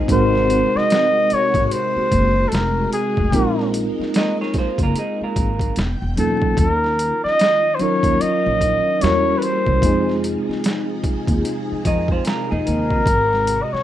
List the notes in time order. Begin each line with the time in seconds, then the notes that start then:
Already playing: C3 G#3 C4 D#4 F4 G#4
0.08 G#1 G#3 C4 D#4 F#4 A#4, kick, closed hi-hat
0.12 C5
0.35 snare
0.50 closed hi-hat
0.75 D#5, muted upright bass stroke, snare
0.90 snare, closed hi-hat
1.30 C#5, muted upright bass stroke, closed hi-hat
1.54 G#1, kick, closed hi-hat
1.67 C#5
1.71 C5, closed hi-hat
1.96 muted upright bass stroke
2.12 F#1, kick, closed hi-hat
2.48 A4, closed hi-hat
2.53 F1 A#4, snare
2.93 G#4, closed hi-hat
3.17 F1, kick
3.31 A#1 G#3 A#3 C4 D#4 F4, kick, closed hi-hat
3.35 A#4
3.59 snare
3.74 closed hi-hat
3.99 muted upright bass stroke, snare
4.14 A#4 D#5, snare, closed hi-hat
4.41 G#4 C#5, snare
4.54 muted upright bass stroke, kick, snare, closed hi-hat
4.58 F4 C5
4.78 F#1, kick, closed hi-hat
4.83 F4 A#4
4.96 D#4 G#4, closed hi-hat
5.21 F4 A#4, muted upright bass stroke
5.36 G#1, kick, closed hi-hat
5.59 kick, closed hi-hat
5.76 E1 B2 G5, snare, closed hi-hat
6.02 E1
6.16 E2 F#3 A#3 C#4 D#4 F4 A4, closed hi-hat
6.42 kick
6.57 D#2 D#3 C#4 F4 A#4, kick, closed hi-hat
6.84 snare
6.99 closed hi-hat
7.24 D#5, muted upright bass stroke, snare
7.39 snare, closed hi-hat
7.75 C5
7.79 F#3 C#4 D#4 F4 A#4 C#5, muted upright bass stroke, closed hi-hat
8.03 D#2, kick, closed hi-hat
8.21 D#5, muted upright bass stroke, closed hi-hat
8.46 A#1
8.61 kick, closed hi-hat
9.00 E2 E3 G3 A#3 C#4 E4 F#4 C#5, closed hi-hat
9.04 A#4, snare
9.38 B4
9.42 C5, closed hi-hat
9.67 C2, kick
9.82 F2 C3 F3 G#3 C4 D#4 F4 G#4, kick, closed hi-hat
10.09 snare
10.24 closed hi-hat
10.49 muted upright bass stroke, snare
10.64 snare, closed hi-hat
11.04 muted upright bass stroke, kick, closed hi-hat
11.28 D#2, kick, closed hi-hat
11.45 closed hi-hat
11.72 muted upright bass stroke
11.85 F2 A#4 D#5, kick, closed hi-hat
12.08 C5, kick
12.12 F4
12.25 F4 A#4, snare, closed hi-hat
12.51 F2 D#4 G#4
12.66 D#2 A#4, closed hi-hat
12.91 kick
13.05 G#1 G#3 F#4, kick, closed hi-hat
13.33 snare
13.47 closed hi-hat
13.63 D#5
13.73 C#5, muted upright bass stroke, snare